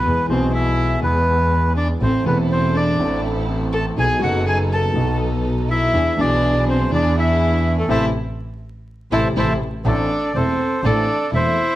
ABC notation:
X:1
M:4/4
L:1/16
Q:1/4=122
K:Am
V:1 name="Bandoneon"
B2 c2 e4 B6 d2 | c2 B2 c2 d4 z4 a2 | ^g2 ^f2 g2 a4 z4 e2- | e2 d4 c2 d2 e4- e A |
[cea]2 z8 [cea]2 [cea]2 z2 | [Ad]4 [Ac]4 [Ad]4 [ce]4 |]
V:2 name="String section"
z16 | [CEA]2 [CEA]6 [CEA]8 | [B,^DA]2 [B,DA]6 [B,DA]8 | [DE^G]2 [DEG]6 [DEG]8 |
[CEA]2 z8 [CEA]2 [CEA]2 z2 | [CEA]2 z2 [CEA]2 z2 [CEA]2 z2 [CEA]2 z2 |]
V:3 name="Violin"
B,2 C2 E4 B,6 D2 | C2 B,2 C2 D4 z4 A2 | ^G2 ^F2 G2 A4 z4 E2- | E2 D4 C2 D2 E4- E A, |
E2 z8 E2 E2 z2 | D4 C4 D4 E4 |]
V:4 name="Grand piano" clef=bass
[E,,E,^G,B,^G]2 [B,,,B,,E,G,B,G]6 [E,,E,G,B,G]8 | [A,,,A,,E,A,CA]2 [E,,,E,,E,A,CA]6 [A,,,A,,E,A,CA]8 | [B,,,B,,^F,B,^DA]2 [^F,,,^F,,F,B,DA]6 [B,,,B,,F,B,DA]8 | [E,,E,B,D^G]2 [B,,,B,,E,B,DG]6 [E,,E,B,DG]8 |
[C,E,A,]2 z8 [C,E,A,]2 [C,E,A,]2 z2 | [A,,,A,,E,A,CA]2 z2 [E,,,E,,E,A,CA]2 z2 [A,,,A,,E,A,CA]2 z2 [E,,,E,,E,A,CA]2 z2 |]
V:5 name="Double bass" clef=bass
E,,2 B,,,6 E,,8 | A,,,2 E,,,6 A,,,8 | B,,,2 ^F,,,6 B,,,8 | E,,2 B,,,6 E,,8 |
A,,,2 z8 A,,,2 A,,,2 z2 | A,,,2 z2 E,,,2 z2 A,,,2 z2 E,,,2 z2 |]